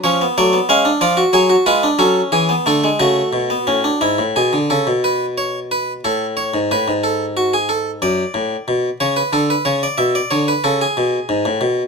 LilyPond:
<<
  \new Staff \with { instrumentName = "Harpsichord" } { \time 12/8 \key e \mixolydian \tempo 4. = 61 << { cis''8 d''8 eis''8 d''8 cis''8 b'8 a'8 gis'8 a'8 fis'4. | e'8 gis'8 a'8 b'8 cis''8 b'8 a'8 cis''8 b'8 a'8 fis'16 gis'16 a'8 | d''4. cis''16 b'16 a'16 b'16 cis''16 d''16 e''16 d''16 cis''16 b'16 a'16 gis'4.~ gis'16 | } \\ { cis'16 b16 a16 b16 cis'16 d'16 eis'16 fis'16 gis'16 fis'16 eis'16 d'16 cis'8. b16 a16 gis16 a8. b16 cis'16 d'16 | r1. | r1. | } >> }
  \new Staff \with { instrumentName = "Harpsichord" } { \clef bass \time 12/8 \key e \mixolydian eis8 fis8 gis8 eis8 fis8 gis8 fis8 e8 d8 cis8 b,8 a,8 | gis,16 a,16 b,16 d16 cis16 b,4.~ b,16 a,8. gis,16 a,16 gis,4.~ gis,16 | fis,8 a,8 b,8 cis8 d8 cis8 b,8 d8 cis8 b,8 gis,16 a,16 b,8 | }
>>